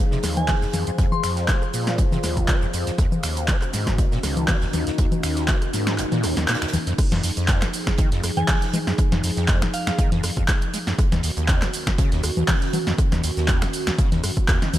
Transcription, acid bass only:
0.12 C3
0.24 D#2
0.48 F3
0.62 F2
0.74 F2
0.87 F2
0.99 F2
1.24 F2
1.49 G#3
1.74 A#2
1.99 F1
2.12 C3
2.24 D#2
2.49 F3
2.62 F2
2.74 F2
2.87 F2
2.99 D#2
3.24 D#2
3.49 F#3
3.74 G#2
3.99 D#1
4.12 A#2
4.24 C#2
4.49 D#3
4.62 D#2
4.74 D#2
4.87 D#2
4.99 D#2
5.24 D#2
5.49 F#3
5.74 G#2
5.99 D#1
6.12 A#2
6.24 D#2
6.37 D#2
6.49 A#2
6.62 D#2
6.73 D#2
6.87 F2
7.12 F2
7.23 F2
7.37 F2
7.62 F1
7.87 F2
7.98 D#3
8.12 F2
8.24 F2
8.37 F2
8.74 G#3
8.87 F#2
9.12 F2
9.23 F2
9.37 F2
9.62 F1
9.87 F2
9.99 D#3
10.12 F2
10.24 F2
10.37 F2
10.74 G#3
10.87 F#2
11.12 D#2
11.23 D#2
11.37 D#2
11.62 D#1
11.87 D#2
11.99 C#3
12.12 D#2
12.24 D#2
12.37 D#2
12.74 F#3
12.87 F2
13.12 D#2
13.24 D#2
13.37 D#2
13.62 D#1
13.87 D#2
13.99 C#3
14.12 D#2
14.24 F#2
14.49 D#2
14.62 D#3
14.74 D#2

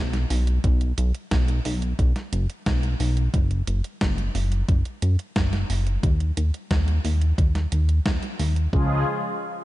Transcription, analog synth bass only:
Already playing: B1
0.30 B1
0.64 B1
0.98 B1
1.32 B1
1.65 B1
1.99 B1
2.33 F#1
2.66 B1
3.00 B1
3.34 F#1
3.68 F#1
4.01 F#1
4.35 F#1
4.69 F#1
5.02 F#2
5.36 F#1
5.70 F#1
6.03 D#2
6.37 D#2
6.71 D#2
7.05 D#2
7.38 D#2
7.72 D#2
8.06 D#2
8.39 D#2
8.73 C#2

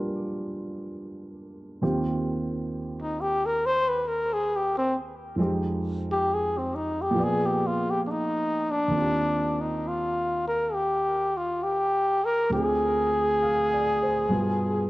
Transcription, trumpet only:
3.02 D#4
3.21 G4
3.46 A#4
3.66 C5
3.89 B4
4.08 A#4
4.33 G#4
4.56 G4
4.78 C4
6.12 G4
6.34 G#4
6.58 C4
6.75 D#4
7.01 G4
7.24 G#4
7.46 G4
7.67 F4
7.90 G4
8.07 D4 D#4
8.71 D4
9.61 D#4
9.88 F4
10.48 A#4
10.74 G4
11.37 F4
11.63 G4
12.25 A#4
12.53 G#4

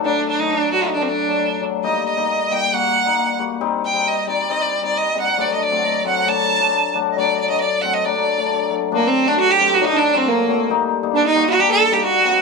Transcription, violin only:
0.05 D4
0.28 D4
0.40 D#4
0.51 D4
0.72 F#4
0.83 D#4
0.93 D4
1.02 C4
1.08 D4
1.84 D#5
2.06 D#5
2.52 G5
2.75 F#5
3.85 G5
4.07 D#5
4.28 D5
4.51 D#5
4.61 D5
4.84 D5
4.97 D#5
5.19 F#5
5.41 D5
5.54 D#5
5.62 D5
6.07 F#5
6.29 A5
7.19 D5
7.41 D5
7.49 D#5
7.60 D5
7.81 F#5
7.94 D#5
8.05 D5
8.95 A#3
9.07 C4
9.28 D4
9.40 F#4
9.51 G4
9.74 F#4
9.85 D#4
9.96 D4
10.17 C4
10.28 A#3
11.16 D4
11.27 D#4
11.49 F#4
11.60 G4
11.71 A4
11.93 G4
12.04 F#4

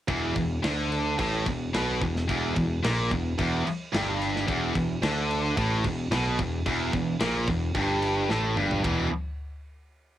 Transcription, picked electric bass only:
0.08 E1
0.36 E1
0.64 D2
1.19 A1
1.46 E1
1.74 B1
2.01 E1
2.29 E1
2.56 E1
2.85 A#1
3.12 E1
3.39 E1
3.94 G1
4.48 E1
4.75 E1
5.02 D2
5.57 A1
5.85 E1
6.11 B1
6.39 E1
6.66 E1
6.93 E1
7.21 A#1
7.48 E1
7.75 G1
8.29 A1
8.56 G1
8.84 E1

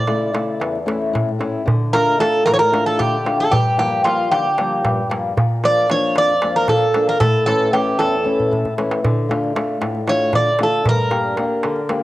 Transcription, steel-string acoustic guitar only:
0.07 C#3 A3 E4
0.33 C#3 A3 E4
0.60 E2
0.86 A3 C#4 E4
1.13 A2
1.39 A3 C#4 E4
1.66 D3
1.93 A3 D4 F4
2.19 A3 D4 F4
2.46 A2
2.72 A3 D4 F4
3.00 D3
3.25 A3 D4 F4
3.52 G2
3.78 F3 G3 A#3
4.05 F3 G3 A#3
4.32 D3
4.58 F3 G3 A#3
4.85 G2
5.09 F3 G3 A#3
5.37 A#2
5.64 F3 A#3 D4
5.90 F3 A#3 D4
6.17 F2
6.43 F3 A#3 D4
6.69 A#2
6.95 F3 A#3 D4
7.22 A2
7.47 E3 A3 C#4
7.72 E3 A3 C#4
8.00 E2
8.24 E3 A3 C#4
8.51 A2
8.78 E3 A3 C#4
9.04 D3
9.29 A3 D4 F4
9.55 A3 D4 F4
9.81 A2
10.07 A3 D4 F4
10.34 D3
10.60 A3 D4 F4
10.86 G2
11.11 A#3 D4 G4
11.38 A#3 D4 G4
11.64 D3
11.89 A#3 D4 G4

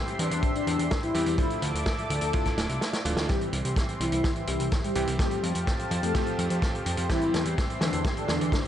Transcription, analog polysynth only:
0.19 D4
0.55 D4
1.03 E4
1.38 E4
2.22 A4
3.29 G3 G4
4.00 E3 E4
4.36 E3 E4
4.84 G3 G4
5.19 G3 G4
6.03 A3 A4
7.10 E3 E4
7.81 D3 D4
8.17 D3 D4
8.65 E4

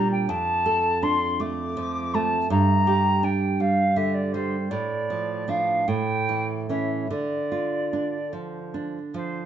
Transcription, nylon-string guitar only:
Already playing: A#2 G3 D4
0.29 F2
0.66 A4
1.03 D4
1.40 A3
1.77 F3
2.14 A3
2.50 G2
2.87 G4
3.23 D4
3.60 G3
3.96 D3
4.34 G3
4.71 A2
5.10 F3
5.48 F3 D4
5.88 A2
6.29 E3
6.69 E3 C#4
7.10 D3
7.52 F4
7.93 D4
8.33 F3
8.74 D4
9.14 F3

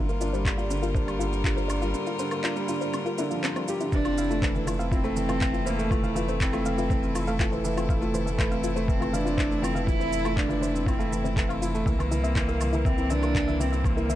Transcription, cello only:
3.92 D4
4.92 C4
5.66 A#3
5.90 A3
6.41 C4
7.90 A3
8.89 C4
9.14 D4
9.62 C4
9.87 E4
10.36 D4
10.86 C4
11.87 A#3
12.85 C4
13.10 D4
13.60 C4
13.85 A#3

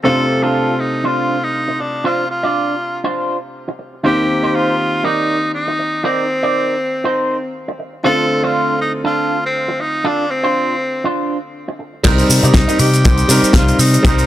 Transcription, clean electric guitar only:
0.04 D4 F4 C5
0.43 D4 F4 A4
1.04 D4 F4 C5
1.68 muted clean electric guitar stroke
1.79 muted clean electric guitar stroke
2.04 D4 F4 C5
2.43 D4 F4 D5
3.04 D4 F4 C5
3.68 muted clean electric guitar stroke
3.79 muted clean electric guitar stroke
4.03 D#4 A#4 C5
4.43 D#4 A#4 C5
5.04 D#4 A#4 D5
5.68 muted clean electric guitar stroke
5.79 muted clean electric guitar stroke
6.04 D#4 A#4 D5
6.43 D#4 A#4 D5
7.04 D#4 A#4 C5
7.68 muted clean electric guitar stroke
7.79 muted clean electric guitar stroke
8.04 D4 F4 C5
8.43 D4 F4 C5
9.04 D4 F4 A4
9.68 muted clean electric guitar stroke
9.79 muted clean electric guitar stroke
10.04 D4 F4 A4
10.43 D4 F4 C5
11.04 D4 F4 C5
11.68 muted clean electric guitar stroke
11.79 muted clean electric guitar stroke
12.04 D#4 G4 A#4 C5
12.43 D#4 G4 A#4 D5
12.68 D#4 G4 A#4 D#5
13.04 D#4 G4 A#4 C5
13.93 muted clean electric guitar stroke
14.04 D#4 G4 A#4 C5

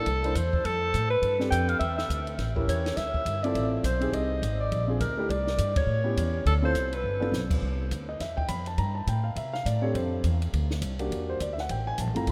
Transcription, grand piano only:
0.23 A#3 D4 E4 C5
1.39 C4 D4 G4 A4
2.56 C#4 E4 G4 A#4
3.44 C4 E4 F4 A4
4.00 C4 D#4 G4 G#4
4.87 C4 D4 F4 G#4
5.17 A3 D4 E4 G4
6.04 B3 C#4 E4 G4
6.62 C4 E4 F4 A4
7.20 B3 D4 F4 A4
8.09 D#5
8.21 E5
8.37 G5
8.48 B5
8.67 A5
8.78 A#5
8.95 A5
9.08 G5
9.24 F5
9.37 E5
9.53 F5
9.66 D5
9.82 C4 D4 G4 A4 C#5
9.95 C5
10.99 A#3 D4 F#4 G4
11.30 C5
11.42 D5
11.53 E5
11.60 F#5
11.71 G5
11.87 G#5
12.00 A5
12.15 A3 C4 E4 F4 A#5

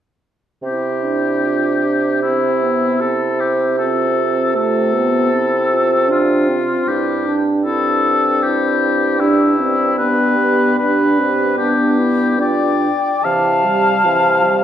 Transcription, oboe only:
0.65 G4
2.22 E4
3.00 A4
3.40 G4
3.79 A4
4.56 A4
6.11 F4
6.88 G4
7.65 A4
8.43 G4
9.20 E4
9.98 B4
10.78 B4
11.58 G4
12.41 D5
13.25 F5

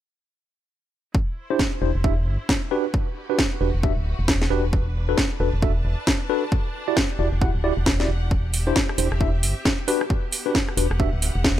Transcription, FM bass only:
1.82 E1
1.95 E1
2.27 G1
3.61 E1
3.75 E1
3.97 D1
4.19 E1
4.50 E1
5.40 E1
5.54 E1
5.85 E1
7.19 E1
7.33 E1
7.55 D1
7.77 E1
8.09 E1
8.98 E1
9.12 E1
9.43 G1
10.77 E1
10.91 E1
11.13 D1
11.36 E1

